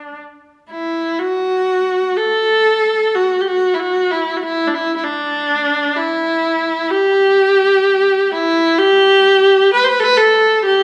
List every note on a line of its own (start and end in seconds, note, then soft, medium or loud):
0.00 0.17 D4 medium
0.70 1.21 E4 medium
1.19 2.18 F#4 medium
2.16 3.17 A4 medium
3.15 3.42 F#4 medium
3.41 3.49 G4 soft
3.47 3.76 F#4 medium
3.74 3.81 E4 soft
3.79 4.12 F#4 medium
4.11 4.38 E4 medium
4.37 4.44 F#4 medium
4.43 4.69 E4 medium
4.67 4.76 D4 soft
4.74 4.96 E4 medium
4.96 5.05 E4 medium
5.04 5.98 D4 medium
5.96 6.92 E4 medium
6.91 8.33 G4 medium
8.31 8.80 E4 medium
8.79 9.73 G4 medium
9.73 9.85 B4 medium
9.84 9.90 C5 medium
9.88 10.01 B4 medium
10.00 10.05 A4 medium
10.00 10.18 B4 loud
10.17 10.65 A4 medium
10.65 10.83 G4 medium